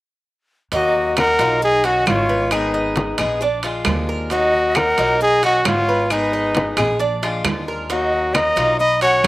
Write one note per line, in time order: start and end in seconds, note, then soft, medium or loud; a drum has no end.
0.72 1.35 D#2 medium
0.72 1.39 D#3 medium
0.72 1.39 F#3 medium
0.72 1.39 A#3 medium
0.72 0.94 D#4 medium
0.72 1.15 F#4 medium
0.72 1.15 D#5 loud
0.72 high conga soft
0.72 high timbale medium
0.96 high conga soft
1.17 1.60 A#4 medium
1.17 1.59 F#5 medium
1.17 high conga loud
1.17 high timbale loud
1.17 low timbale medium
1.17 claves medium
1.39 2.03 B1 medium
1.39 1.62 F#3 medium
1.39 1.62 A#3 medium
1.39 1.83 D#4 medium
1.39 1.61 F4 medium
1.39 high timbale medium
1.62 1.87 G#4 loud
1.62 1.85 D#5 medium
1.62 muted steel-string acoustic guitar stroke medium
1.62 high conga soft
1.84 2.05 D#3 medium
1.84 2.06 C#4 medium
1.84 2.06 F#4 medium
1.84 2.28 F#4 medium
1.84 2.07 F#4 medium
1.84 2.07 D#5 medium
1.84 high conga soft
1.84 high timbale medium
2.06 3.12 G#1 loud
2.06 2.50 B2 soft
2.06 2.50 D#3 medium
2.06 2.51 C#4 medium
2.06 2.53 F4 medium
2.06 2.54 C#5 medium
2.06 high conga medium
2.06 high timbale medium
2.06 low timbale medium
2.06 claves medium
2.29 2.51 B4 medium
2.29 high conga soft
2.51 3.18 D#3 medium
2.51 3.18 G#3 medium
2.51 3.18 B3 medium
2.51 3.19 D#4 medium
2.51 3.17 D#4 medium
2.51 2.73 G#4 medium
2.51 3.17 G#4 medium
2.51 3.19 B4 medium
2.51 high conga soft
2.51 high timbale medium
2.51 claves medium
2.74 3.17 D#5 medium
2.74 high conga soft
2.96 high conga loud
2.96 high timbale medium
2.96 low timbale medium
3.18 3.82 A#1 medium
3.18 3.40 G#3 medium
3.18 3.41 B3 medium
3.18 3.40 D#4 medium
3.18 3.40 G#4 medium
3.18 3.41 G#4 medium
3.18 high conga soft
3.18 low conga medium
3.18 high timbale medium
3.18 claves medium
3.41 3.63 D4 medium
3.41 muted steel-string acoustic guitar stroke medium
3.41 high conga soft
3.63 3.86 G#3 medium
3.63 3.86 D4 medium
3.63 3.85 F4 medium
3.63 4.07 F4 medium
3.63 high conga soft
3.63 high timbale medium
3.85 4.92 D#2 loud
3.85 4.30 F3 soft
3.85 4.30 G#3 medium
3.85 4.31 D4 soft
3.85 4.31 F4 medium
3.85 high conga medium
3.85 high timbale loud
3.85 low timbale medium
3.85 claves medium
4.09 4.30 A#4 medium
4.30 4.97 D#3 medium
4.30 4.97 F#3 medium
4.30 4.98 A#3 medium
4.30 4.53 D#4 medium
4.30 4.78 F#4 medium
4.30 4.77 D#5 loud
4.30 high conga soft
4.30 high timbale medium
4.54 high conga soft
4.75 5.21 A#4 loud
4.75 5.20 F#5 medium
4.75 high conga medium
4.75 high timbale medium
4.75 low timbale medium
4.75 claves medium
4.98 5.61 B1 medium
4.98 5.20 F#3 medium
4.98 5.20 A#3 medium
4.98 5.42 D#4 loud
4.98 5.19 F4 medium
4.98 high timbale medium
5.20 5.42 G#4 loud
5.20 5.41 D#5 medium
5.20 muted steel-string acoustic guitar stroke medium
5.20 high conga soft
5.43 5.64 D#3 medium
5.43 5.64 C#4 medium
5.43 5.64 F#4 medium
5.43 5.87 F#4 medium
5.43 5.65 F#4 loud
5.43 5.64 D#5 medium
5.43 high conga soft
5.43 high timbale medium
5.65 6.71 G#1 loud
5.65 6.09 D#3 medium
5.65 6.09 C#4 medium
5.65 6.13 F4 medium
5.65 6.12 C#5 medium
5.65 high conga medium
5.65 high timbale loud
5.65 low timbale medium
5.65 claves medium
5.89 6.10 B4 medium
5.89 high conga soft
6.10 6.77 D#3 medium
6.10 6.77 G#3 medium
6.10 6.77 B3 medium
6.10 6.77 D#4 medium
6.10 6.78 D#4 medium
6.10 6.32 G#4 medium
6.10 6.76 G#4 medium
6.10 6.78 B4 medium
6.10 high conga soft
6.10 high timbale medium
6.10 claves medium
6.33 6.76 D#5 medium
6.33 high conga soft
6.55 high conga loud
6.55 high timbale medium
6.55 low timbale medium
6.77 7.40 A#1 medium
6.77 6.99 G#3 medium
6.77 6.99 B3 medium
6.77 6.99 D#4 medium
6.77 6.99 G#4 medium
6.77 high conga soft
6.77 low conga medium
6.77 high timbale loud
6.77 claves medium
6.99 7.21 D4 medium
6.99 muted steel-string acoustic guitar stroke medium
6.99 high conga soft
7.23 7.44 G#3 medium
7.23 7.45 D4 medium
7.23 7.44 F4 medium
7.23 7.66 F4 medium
7.23 high conga soft
7.23 high timbale medium
7.45 8.51 D#2 loud
7.45 7.89 F3 medium
7.45 7.89 G#3 medium
7.45 7.89 D4 medium
7.45 7.90 F4 medium
7.45 high conga medium
7.45 high timbale loud
7.45 low timbale medium
7.45 claves medium
7.68 7.90 A#4 medium
7.89 8.56 D#3 medium
7.89 8.56 F#3 medium
7.89 8.56 A#3 medium
7.89 8.12 D#4 medium
7.89 8.36 F#4 medium
7.89 8.35 D#5 medium
7.89 high conga soft
7.89 high timbale medium
8.13 high conga soft
8.34 8.79 D#5 loud
8.34 8.79 A#5 medium
8.34 high conga loud
8.34 high timbale loud
8.34 low timbale medium
8.34 claves medium
8.56 9.20 B1 medium
8.56 8.79 F#3 medium
8.56 8.79 A#3 medium
8.56 9.01 D#4 medium
8.56 8.78 F4 medium
8.56 high timbale medium
8.79 9.01 D#5 loud
8.79 9.00 B5 medium
8.79 muted steel-string acoustic guitar stroke medium
8.79 high conga soft
9.01 9.23 D#3 medium
9.01 9.24 C#4 medium
9.01 9.23 F#4 medium
9.01 9.27 F#4 medium
9.01 9.27 C#5 medium
9.01 9.27 F#5 loud
9.01 high conga soft
9.01 high timbale medium
9.24 9.27 G#1 loud
9.24 9.27 B2 medium
9.24 claves medium